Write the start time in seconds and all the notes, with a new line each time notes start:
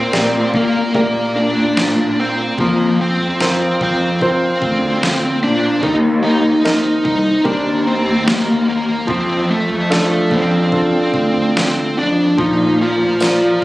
Already playing: A#3 C4 C5
0.12 A#2 G4 A#4 D5, snare
0.54 A#3 A#4, kick, floor tom
0.94 A#2 A#3 G4 A#4 D5, kick, floor tom
1.36 D4 D5
1.56 floor tom
1.77 snare
2.20 C4 C5
2.58 F2 F3 A#3 A#4, kick, floor tom
3.01 C4 C5
3.20 F2, floor tom
3.40 F4 A#4 C5, snare
3.81 F2 C4 C5, kick, floor tom
4.21 F4 A#4 C5, kick, floor tom
4.62 D2, kick
4.81 floor tom
5.03 snare
5.42 A#2 D4 D5
5.83 D#2 D#3 D#4 D#5, kick, floor tom
6.24 D#4 D#5
6.44 floor tom
6.64 C4 D#4 A#4, snare
7.05 C2 D#4 D#5, kick, floor tom
7.44 D#2 C4 D4 G4 A#4 D5, kick, floor tom
7.87 C4 C5
8.06 floor tom
8.27 A#3 A#4, snare
8.69 A#3 A#4
9.07 F2 F3 C4 C5, kick, floor tom
9.50 A3 A4
9.69 F2, floor tom
9.90 A3 D4 F4 A4, snare
10.31 F2 C4 C5, kick, floor tom
10.72 D4 F4 A4, kick, floor tom
11.14 D2, kick
11.34 floor tom
11.57 snare
11.98 F2 D4 D5
12.38 A#2 F3 D#4 A#4 D#5, kick, floor tom
12.82 F3 F4
13.00 floor tom
13.20 F4 A#4 D5, snare, tambourine